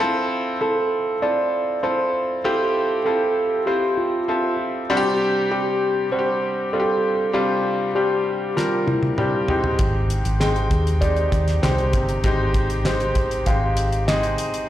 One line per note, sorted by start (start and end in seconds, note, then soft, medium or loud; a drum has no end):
0.00 0.53 C4 medium
0.00 0.53 E4 medium
0.00 0.53 F4 medium
0.00 0.53 A4 loud
0.61 1.14 C4 medium
0.61 1.14 E4 medium
0.61 1.14 F4 medium
0.61 1.19 A4 medium
0.61 1.14 A4 medium
1.22 1.75 C4 medium
1.22 1.75 E4 soft
1.22 1.75 F4 medium
1.22 1.75 A4 medium
1.22 1.85 D5 medium
1.83 2.36 C4 medium
1.83 2.36 E4 medium
1.83 2.36 F4 medium
1.83 2.37 A4 medium
1.83 2.47 C5 medium
2.44 2.98 C4 medium
2.44 2.98 E4 medium
2.44 2.98 F4 medium
2.44 2.98 G4 medium
2.44 3.04 A4 medium
3.05 3.59 C4 medium
3.05 3.59 E4 medium
3.05 3.59 F4 medium
3.05 3.63 A4 medium
3.05 3.59 A4 medium
3.66 4.20 C4 medium
3.66 4.20 E4 medium
3.66 4.20 F4 medium
3.66 3.98 G4 medium
3.66 4.20 C5 medium
3.97 4.55 F4 medium
4.28 4.81 C4 medium
4.28 4.81 F4 medium
4.28 4.82 A4 medium
4.28 4.81 E5 medium
4.90 5.78 C3 medium
4.90 5.43 G3 loud
4.90 5.43 C4 medium
4.90 5.43 D4 medium
4.90 4.96 F#4 medium
4.97 5.46 G4 loud
5.51 6.04 G3 medium
5.51 6.04 C4 medium
5.51 6.04 D4 medium
5.51 6.04 G4 medium
5.51 6.08 G4 medium
6.12 6.65 G3 medium
6.12 6.65 C4 medium
6.12 6.65 D4 medium
6.12 6.19 F#4 medium
6.12 6.69 C5 medium
6.19 6.68 G4 medium
6.73 7.26 G3 medium
6.73 7.26 C4 medium
6.73 7.26 D4 medium
6.73 6.80 F4 medium
6.73 7.31 A4 medium
6.80 7.29 G4 medium
7.33 8.22 C3 soft
7.33 7.87 G3 medium
7.33 7.87 C4 medium
7.33 7.87 D4 medium
7.33 7.87 F4 medium
7.33 7.92 G4 medium
7.95 8.48 G3 medium
7.95 8.49 C4 medium
7.95 8.49 D4 medium
7.95 8.59 G4 medium
7.95 8.49 G4 medium
8.56 9.10 G3 medium
8.56 9.10 C4 medium
8.56 9.10 D4 medium
8.56 8.88 F4 medium
8.56 9.10 A#4 medium
8.56 snare soft
8.87 9.45 E4 medium
8.87 high tom medium
9.03 high tom medium
9.18 9.49 G3 medium
9.18 9.47 C4 medium
9.18 9.49 D4 medium
9.18 9.48 G4 medium
9.18 mid tom medium
9.48 10.37 G#2 soft
9.48 10.28 G#3 medium
9.48 10.28 C4 medium
9.48 10.28 D#4 medium
9.48 10.29 G4 medium
9.48 floor tom medium
9.64 floor tom medium
9.79 10.22 G#1 medium
9.79 kick medium
9.79 closed hi-hat medium
10.10 closed hi-hat medium
10.25 10.68 G#1 medium
10.25 closed hi-hat soft
10.40 10.93 G#3 medium
10.40 10.93 C4 medium
10.40 10.94 D#4 medium
10.40 11.04 G#4 medium
10.40 10.94 G5 medium
10.40 snare medium
10.40 clap medium
10.56 closed hi-hat soft
10.71 11.29 D#2 medium
10.71 kick medium
10.71 closed hi-hat medium
10.87 closed hi-hat soft
11.01 11.55 G#3 medium
11.01 11.55 C4 medium
11.01 11.55 D#4 medium
11.01 11.55 G4 medium
11.01 11.59 D5 medium
11.01 kick medium
11.01 closed hi-hat medium
11.16 closed hi-hat soft
11.32 11.61 D#2 medium
11.32 kick medium
11.32 closed hi-hat medium
11.48 snare soft
11.48 closed hi-hat soft
11.62 11.92 C2 medium
11.62 12.16 G#3 medium
11.62 12.16 C4 medium
11.62 12.16 D#4 medium
11.62 12.16 G4 medium
11.62 12.20 C5 medium
11.62 snare medium
11.62 clap medium
11.78 closed hi-hat soft
11.93 12.22 G1 medium
11.93 12.82 C3 medium
11.93 kick medium
11.93 closed hi-hat medium
12.09 closed hi-hat soft
12.24 13.43 G#1 medium
12.24 12.77 G#3 medium
12.24 12.77 C4 medium
12.24 12.77 D#4 medium
12.24 12.77 G4 medium
12.24 kick loud
12.24 closed hi-hat medium
12.54 kick medium
12.54 closed hi-hat medium
12.70 closed hi-hat soft
12.85 13.39 G#3 medium
12.85 13.39 C4 medium
12.85 13.39 D#4 medium
12.85 13.39 G4 medium
12.85 13.49 C5 medium
12.85 snare medium
12.85 clap medium
13.00 closed hi-hat soft
13.15 kick medium
13.15 closed hi-hat medium
13.31 closed hi-hat soft
13.46 14.35 G#1 medium
13.46 14.00 G#3 medium
13.46 14.00 C4 medium
13.46 14.00 D#4 soft
13.46 14.00 G4 medium
13.46 14.04 F5 medium
13.46 kick medium
13.46 closed hi-hat medium
13.77 closed hi-hat medium
13.93 closed hi-hat soft
14.08 14.61 G#3 medium
14.08 14.61 C4 medium
14.08 14.61 D#4 medium
14.08 14.61 G#4 medium
14.08 14.65 D#5 medium
14.08 snare medium
14.08 clap medium
14.23 closed hi-hat soft
14.38 closed hi-hat medium
14.54 closed hi-hat soft